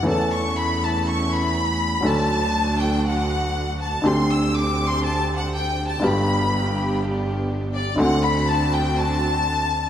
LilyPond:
<<
  \new Staff \with { instrumentName = "Violin section" } { \time 4/4 \key d \mixolydian \tempo 4 = 122 a''8 cis'''8 b''8 a''8 cis'''8 b''4. | a''4. g''8 fis''4. a''8 | c'''8 e'''8 \tuplet 3/2 { d'''4 c'''8 a''4 fis''8 g''4 a''8 } | b''2 r4. d''8 |
fis''8 b''8 a''8 g''8 a''2 | }
  \new Staff \with { instrumentName = "String section" } { \time 4/4 \key d \mixolydian <a cis' e'>1 | <a d' fis'>1 | <c' d' g'>1 | <b d' g'>1 |
<c' d' fis'>1 | }
  \new Staff \with { instrumentName = "Upright piano" } { \time 4/4 \key d \mixolydian <e, e a cis' a'>1 | <d, d fis a d' a'>1 | <d, d a c' g'>1 | <g,, g, d g b g'>1 |
<d, d a c' fis'>1 | }
  \new Staff \with { instrumentName = "Double bass" } { \clef bass \time 4/4 \key d \mixolydian e,1 | d,1 | d,1 | g,,1 |
d,1 | }
>>